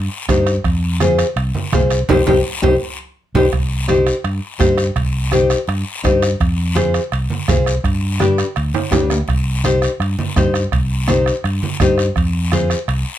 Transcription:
0.29 G2 D#4 G4 C5, bombo low, bombo rim, high conga, high timbale, low timbale, short guiro
0.46 bombo rim, high timbale, short guiro
0.64 F2, bombo low, bombo rim, high timbale, long guiro
1.00 F4 G#4 C5, bombo rim, high conga, high timbale, short guiro
1.18 bombo rim, high timbale, short guiro
1.36 C2, bombo rim, high timbale, long guiro
1.55 high conga
1.73 C2 F4 G#4 C5, bombo low, bombo rim, high conga, high timbale, low timbale, short guiro
1.90 bombo rim, high timbale, short guiro
2.09 C2 D#4 G4 C5, bombo low, low conga, high timbale, long guiro
2.27 C2 D#4 G4 C5, bombo low, low conga, high timbale, long guiro
2.62 C2 D#4 G4 C5, bombo low, low conga, high timbale
3.35 C2 D#4 G4 C5, bombo low, low conga, high timbale, long guiro
3.53 C2, bombo low, bombo rim, high timbale, long guiro
3.88 D#4 G4 C5, bombo rim, high conga, high timbale, short guiro
4.07 bombo rim, high timbale, short guiro
4.24 G2, bombo rim, high timbale, long guiro
4.59 G2 D#4 G4 C5, bombo low, bombo rim, high conga, high timbale, low timbale, short guiro
4.78 bombo rim, high timbale, short guiro
4.96 C2, bombo low, bombo rim, high timbale, long guiro
5.31 D#4 G4 C5, bombo rim, high conga, high timbale, short guiro
5.50 bombo rim, high timbale, short guiro
5.68 G2, bombo rim, high timbale, long guiro
6.03 G2 D#4 G4 C5, bombo low, bombo rim, high conga, high timbale, short guiro
6.22 bombo rim, high timbale, short guiro
6.40 F2, bombo low, bombo rim, high timbale, long guiro
6.75 F4 G#4 C5, bombo rim, high conga, high timbale, short guiro
6.94 bombo rim, high timbale, short guiro
7.12 C2, bombo rim, high timbale, long guiro
7.30 high conga
7.48 C2 F4 G#4 C5, bombo low, bombo rim, high conga, high timbale, low timbale, short guiro
7.66 bombo rim, high timbale, short guiro
7.84 G2, bombo low, bombo rim, high timbale, long guiro
8.20 D4 G4 B4, bombo rim, high conga, high timbale, short guiro
8.38 bombo rim, high timbale, short guiro
8.56 D2, bombo rim, high timbale, long guiro
8.74 high conga, high timbale
8.91 D2 D4 G4 B4, bombo low, bombo rim, high conga, high timbale, short guiro
9.10 bombo rim, low timbale, short guiro
9.28 C2, bombo low, bombo rim, high timbale, long guiro
9.64 D#4 G4 C5, bombo rim, high conga, high timbale, short guiro
9.82 bombo rim, high timbale, short guiro
10.00 G2, bombo rim, high timbale, long guiro
10.19 high conga
10.36 G2 D#4 G4 C5, bombo low, bombo rim, high conga, high timbale, short guiro
10.54 bombo rim, high timbale, short guiro
10.72 C2, bombo low, bombo rim, high timbale, long guiro
11.07 D#4 G4 C5, bombo rim, high conga, high timbale, short guiro
11.26 bombo rim, high timbale, short guiro
11.44 G2, bombo rim, high timbale, long guiro
11.63 high conga
11.80 G2 D#4 G4 C5, bombo low, bombo rim, high conga, high timbale, short guiro
11.98 bombo rim, high timbale, short guiro
12.16 F2, bombo low, bombo rim, high timbale, long guiro
12.52 F4 G#4 C5, bombo rim, high conga, high timbale, short guiro
12.70 bombo rim, high timbale, short guiro
12.88 C2, bombo rim, high timbale, long guiro

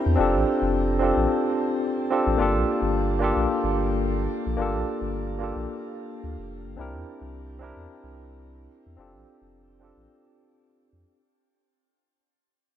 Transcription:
Already playing: C4 D4 E4 G4 A#4
0.06 E2
0.16 F1 C4 D4 F4 G4
0.21 A4
0.35 A1
0.62 F1
0.99 C4 D4 F4 G4
1.04 A4
1.17 A1
2.10 C4 D4 F4 G4 A4
2.27 A1
2.37 G1 A#3 D4 F4 G4
2.42 A4
2.54 A#1
2.82 G1
3.19 A#3 D4 F4 G4
3.24 A4
3.36 A#1
3.64 G1
4.47 A#1
4.57 G1 A#3 D4 F4 G4
4.62 A4
4.74 A#1
5.01 G1
5.39 A#3 D4 F4 G4
5.43 A4
5.56 A#1
6.24 D2
6.39 F1
6.66 G1
6.76 C2 C4 D4 E4 G4
6.81 A#4
6.93 E2
7.21 C2
7.59 C4 D4 E4 G4
7.64 A#4
7.76 E2
8.04 C2
8.86 E2
8.97 F1 C4 D4 F4 G4
9.02 A4
9.14 A1
9.42 F1
9.79 C4 D4 F4 G4
9.84 A4
9.97 A1
10.93 F2

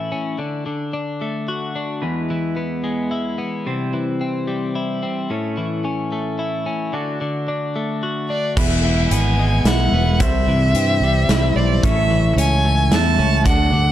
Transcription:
Already playing: A2 E3 A3 C#4 E4
0.12 C#4
0.38 D3
0.66 D3
0.93 D4
1.21 A3
1.48 F#4
1.76 D4
2.01 E2 G#3 B3 E4 B4
2.30 E3
2.56 B3
2.84 G#3
3.11 E4
3.38 B3
3.66 C3 G3 C4 C5
3.93 E3
4.21 C4
4.47 G3
4.75 E4
5.03 C4
5.30 A2 A3 C#4 C#5
5.57 E3
5.85 C#4
6.12 A3
6.39 E4
6.66 C#4
6.93 D3 D4 F#4 D5
7.21 D3
7.48 D4
7.76 A3
8.03 F#4
8.29 D4 D5
8.57 E1 E2 G#3 B3 E4 B4 E5, kick, crash
8.85 E3
9.11 G#1 B3 G#5, closed hi-hat
9.39 G#3
9.64 B1 E4 F#5, snare, closed hi-hat
9.92 E1 B3
10.20 C2 C3 G3 C4 C5 E5, kick, closed hi-hat
10.47 C2 E3
10.74 G2 C4, closed hi-hat
11.01 C2 G3
11.29 C2 E4, snare, closed hi-hat
11.56 B1 C4 D5
11.83 A1 A2 A3 C#4 E4 C#5 E5, kick, closed hi-hat
12.11 E3
12.36 C#2 C#4 G#5, closed hi-hat
12.65 A3
12.91 E2 E4 A5, snare, closed hi-hat
13.19 C#2 C#4
13.44 D2 D3 D4 F#4 D5 F#5, kick, closed hi-hat
13.72 D2 D3

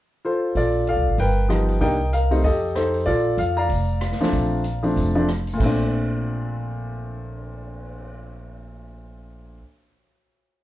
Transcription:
0.25 F4 A4 C5
0.55 A#1 F4 A4 D5, kick, open hi-hat
0.87 A4 D5 F5, closed hi-hat
0.97 C2
1.07 A1
1.18 G1 A#4 B4 G5, kick, open hi-hat
1.49 F3 G3 B3 D#4, cross-stick, closed hi-hat
1.69 open hi-hat
1.80 C2 G3 A#3 D4 D#4 A#4 D#5 G5, kick, open hi-hat
2.13 A#4 F5, closed hi-hat
2.31 G3 A3 C4 D#4, open hi-hat
2.44 F2 G4 A4 D#5, kick, open hi-hat
2.75 D#4 A4 C5, cross-stick, closed hi-hat
2.94 open hi-hat
3.06 A#1 F4 A4 D5, kick, open hi-hat
3.37 F2 F5, closed hi-hat
3.57 D5 F5 A#5
3.69 F1, kick, open hi-hat
4.01 cross-stick, closed hi-hat
4.12 snare
4.19 F3 A3 C4 D4, muted upright bass stroke, snare, open hi-hat
4.33 A#1, kick, open hi-hat
4.64 closed hi-hat
4.82 F3 A3 C4 D4, open hi-hat
4.96 F1, kick, open hi-hat
5.15 F3 A3 C4 D4
5.28 cross-stick, closed hi-hat
5.47 open hi-hat
5.54 A#2 A3
5.59 A#1 C4, kick, crash
5.66 D4
5.79 cymbal swell

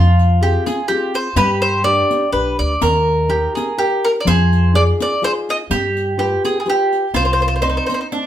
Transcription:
Already playing: F2 F3 F4
0.19 riq
0.41 C4 F4 G4 G#4
0.66 G#4, riq
0.88 C4 F4 G4 G#4, riq
1.14 C5, riq
1.36 G2 G3 G4 B4, riq
1.62 C5, riq
1.84 D4 G4 B4 D5
2.11 riq
2.32 B1 D4 G4 B4, riq
2.59 D2 D5, riq
2.81 D#2 D#3 A#4, riq
3.29 D#4 G4 A#4
3.55 G#4, riq
3.78 D#4 G4 A#4, riq
4.04 A#4, riq
4.20 D5
4.25 F2 F3 G#4 C5, riq
4.53 riq
4.74 D#4 F4 G#4 D5
5.00 D5, riq
5.22 D#4 F4 G#4 C5, riq
5.49 D#5, riq
5.70 G2 G3 G4, riq
5.97 riq
6.17 F4 G4 B4
6.45 G#4, riq
6.60 G#4
6.65 F4 G4 B4, riq
6.70 G4
6.93 riq
7.14 C2 C3 F4 C5, riq
7.25 C5
7.33 C5
7.40 C5, riq
7.48 C5
7.56 C5
7.62 C4 D#4 C5 D5, riq
7.69 C5
7.77 C5
7.86 C5, riq
7.94 C5
8.01 C5
8.12 C4 D4 D#4

